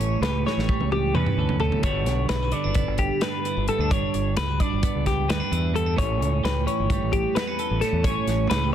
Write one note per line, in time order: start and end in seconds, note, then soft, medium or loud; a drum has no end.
0.00 0.20 A1 medium
0.00 1.16 A2 medium
0.00 0.69 G3 medium
0.00 0.46 C#4 soft
0.00 0.22 C#5 medium
0.00 closed hi-hat medium
0.21 0.43 C#2 medium
0.21 1.38 G4 medium
0.21 0.46 B4 medium
0.21 snare loud
0.21 closed hi-hat medium
0.46 1.82 E3 medium
0.46 1.15 C#4 medium
0.46 0.92 C#5 medium
0.46 snare medium
0.57 0.68 A1 medium
0.57 snare soft
0.69 1.85 G3 medium
0.69 kick loud
0.80 1.12 C#2 medium
0.80 high tom medium
0.92 1.15 G4 medium
0.92 high tom medium
1.14 1.25 E2 medium
1.14 1.62 E2 medium
1.14 1.61 C#4 medium
1.14 1.60 B4 medium
1.14 mid tom medium
1.26 mid tom medium
1.37 1.85 D2 medium
1.37 1.82 A4 medium
1.49 floor tom medium
1.60 1.85 A2 medium
1.60 1.82 C#4 soft
1.60 1.83 A4 medium
1.60 floor tom medium
1.72 floor tom medium
1.83 2.06 G1 medium
1.83 3.22 G2 medium
1.83 2.52 D3 medium
1.83 2.53 B3 medium
1.83 2.53 D4 medium
1.83 2.29 F#4 medium
1.83 2.29 C#5 medium
1.83 kick loud
1.83 closed hi-hat medium
2.06 2.28 B1 medium
2.06 snare soft
2.06 closed hi-hat medium
2.29 2.51 B1 medium
2.29 2.43 E4 medium
2.29 2.52 B4 medium
2.29 snare loud
2.29 closed hi-hat medium
2.43 3.46 F#4 soft
2.52 4.60 D3 medium
2.52 2.64 B3 soft
2.52 2.99 D5 medium
2.52 closed hi-hat medium
2.64 2.86 F#1 medium
2.64 3.22 D4 soft
2.75 3.68 B3 medium
2.75 kick loud
2.75 closed hi-hat medium
2.88 3.09 G1 medium
2.98 3.23 G4 medium
2.98 kick medium
2.98 closed hi-hat medium
3.21 3.68 G2 medium
3.21 3.69 D4 medium
3.21 3.68 B4 medium
3.21 snare loud
3.21 closed hi-hat medium
3.45 3.92 E4 soft
3.45 closed hi-hat medium
3.57 3.68 G1 medium
3.68 3.89 G2 medium
3.68 3.81 B3 soft
3.68 3.91 A4 medium
3.68 closed hi-hat medium
3.79 3.90 D2 medium
3.79 3.92 D4 soft
3.91 4.02 G1 medium
3.91 5.27 G2 medium
3.91 4.60 D4 medium
3.91 4.37 C#5 medium
3.91 kick loud
3.91 closed hi-hat medium
4.14 4.36 G1 medium
4.14 closed hi-hat medium
4.37 4.58 C#2 medium
4.37 4.49 E4 medium
4.37 4.60 B4 medium
4.37 snare loud
4.37 closed hi-hat medium
4.49 5.52 F#4 soft
4.60 5.28 D4 medium
4.60 5.06 D5 medium
4.60 kick medium
4.60 closed hi-hat medium
4.73 4.83 G1 medium
4.83 5.27 B3 medium
4.83 kick loud
4.83 closed hi-hat medium
4.95 5.27 C#2 medium
5.06 5.29 G4 medium
5.06 kick medium
5.06 snare soft
5.06 closed hi-hat medium
5.28 5.40 D2 medium
5.28 5.72 G2 medium
5.28 5.40 B3 soft
5.28 5.75 B4 medium
5.28 snare loud
5.28 closed hi-hat medium
5.40 5.74 D4 soft
5.51 6.00 E2 medium
5.51 6.43 E4 medium
5.51 closed hi-hat medium
5.73 5.95 G2 medium
5.73 5.86 B3 soft
5.73 5.98 A4 medium
5.73 closed hi-hat medium
5.86 5.96 D4 soft
5.96 6.22 A1 medium
5.96 7.35 A2 medium
5.96 6.67 C#4 medium
5.96 6.44 C#5 medium
5.96 kick loud
5.96 closed hi-hat medium
6.22 6.43 C#2 medium
6.22 closed hi-hat medium
6.43 6.65 C#2 medium
6.43 7.59 G4 medium
6.43 6.67 B4 medium
6.43 snare loud
6.43 closed hi-hat medium
6.67 8.74 E3 medium
6.67 7.36 C#4 medium
6.67 7.13 C#5 medium
6.67 closed hi-hat medium
6.80 7.00 G1 medium
6.90 8.75 G3 medium
6.90 kick loud
6.90 closed hi-hat medium
7.02 7.23 A1 medium
7.13 7.36 G4 medium
7.13 kick medium
7.13 closed hi-hat medium
7.35 7.82 E2 medium
7.35 7.48 B3 medium
7.35 7.81 B4 medium
7.35 snare loud
7.35 closed hi-hat medium
7.48 7.82 C#4 soft
7.59 8.02 A4 medium
7.59 closed hi-hat medium
7.71 7.81 A1 medium
7.81 8.04 A2 medium
7.81 8.03 C#4 medium
7.81 8.04 A4 medium
7.81 snare soft
7.81 closed hi-hat medium
7.92 8.03 E2 medium
8.04 8.15 A1 medium
8.04 8.75 A2 medium
8.04 8.74 C#4 medium
8.04 8.49 C#5 medium
8.04 kick loud
8.04 closed hi-hat medium
8.27 8.48 A1 medium
8.27 snare soft
8.27 closed hi-hat medium
8.50 8.71 C#2 medium
8.50 8.64 E4 medium
8.50 8.73 B4 medium
8.50 snare loud
8.50 closed hi-hat medium
8.64 8.75 G4 medium